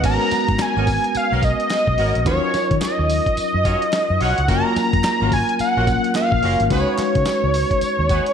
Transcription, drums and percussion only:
0.04 kick, closed hi-hat, crash, tambourine
0.31 snare, closed hi-hat, tambourine
0.48 kick, closed hi-hat
0.59 snare, clap, closed hi-hat, tambourine
0.87 kick, open hi-hat, tambourine
1.04 closed hi-hat
1.15 closed hi-hat, tambourine
1.43 kick, closed hi-hat, tambourine
1.60 closed hi-hat
1.70 snare, clap, closed hi-hat, tambourine
1.87 kick
1.98 open hi-hat
2.15 closed hi-hat
2.26 kick, closed hi-hat, tambourine
2.54 snare, closed hi-hat, tambourine
2.71 kick, closed hi-hat
2.82 snare, clap, closed hi-hat, tambourine
3.09 open hi-hat, tambourine
3.26 kick, closed hi-hat
3.37 closed hi-hat, tambourine
3.65 kick, closed hi-hat, tambourine
3.82 closed hi-hat
3.93 snare, clap, closed hi-hat, tambourine
4.21 open hi-hat
4.38 closed hi-hat
4.48 kick, closed hi-hat, tambourine
4.76 snare, closed hi-hat, tambourine
4.93 kick, closed hi-hat
5.04 snare, clap, closed hi-hat, tambourine
5.32 kick, open hi-hat, tambourine
5.49 closed hi-hat
5.59 closed hi-hat, tambourine
5.87 kick, closed hi-hat, tambourine
6.04 closed hi-hat
6.15 snare, clap, closed hi-hat, tambourine
6.32 kick
6.43 open hi-hat
6.60 closed hi-hat
6.70 kick, closed hi-hat, tambourine
6.98 snare, clap, closed hi-hat, tambourine
7.15 kick, closed hi-hat
7.26 snare, clap, closed hi-hat, tambourine
7.54 open hi-hat, tambourine
7.71 kick, closed hi-hat
7.81 closed hi-hat, tambourine
8.09 kick, closed hi-hat, tambourine
8.26 closed hi-hat

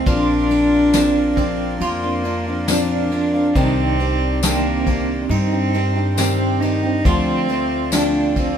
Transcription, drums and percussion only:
0.06 kick, ride
0.51 ride
0.94 snare, ride, tambourine
1.37 kick, ride
1.81 ride
2.25 ride
2.68 snare, ride, tambourine
3.12 ride
3.56 kick, ride
4.00 ride
4.43 snare, ride, tambourine
4.87 kick, ride
5.30 ride
5.74 ride
6.18 snare, ride, tambourine
6.62 ride
7.05 kick, ride
7.49 ride
7.92 snare, ride, tambourine
8.36 kick, ride

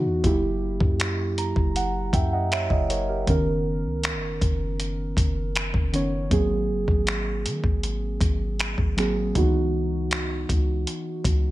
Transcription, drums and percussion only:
0.24 kick, closed hi-hat
0.80 kick
1.00 finger snap, closed hi-hat
1.38 closed hi-hat
1.56 kick
1.76 closed hi-hat
2.13 kick, closed hi-hat
2.52 finger snap, closed hi-hat
2.70 kick
2.90 closed hi-hat
3.27 kick, closed hi-hat
4.03 finger snap, closed hi-hat
4.41 kick, closed hi-hat
4.80 closed hi-hat
5.17 kick, closed hi-hat
5.55 finger snap, closed hi-hat
5.74 kick
5.94 closed hi-hat
6.31 kick, closed hi-hat
6.88 kick
7.07 finger snap, closed hi-hat
7.46 closed hi-hat
7.64 kick
7.83 closed hi-hat
8.21 kick, closed hi-hat
8.59 finger snap, closed hi-hat
8.78 kick
8.98 finger snap, closed hi-hat
9.35 kick, closed hi-hat
10.11 finger snap, closed hi-hat
10.49 kick, closed hi-hat
10.87 closed hi-hat
11.24 kick, closed hi-hat

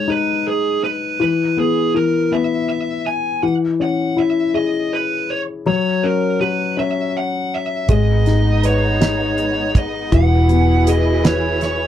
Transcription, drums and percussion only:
7.89 kick, closed hi-hat
8.26 snare, closed hi-hat
8.63 closed hi-hat
9.01 snare, closed hi-hat
9.38 closed hi-hat
9.75 kick, closed hi-hat
10.12 kick, closed hi-hat
10.49 closed hi-hat
10.87 closed hi-hat
11.25 snare, closed hi-hat
11.61 snare, closed hi-hat

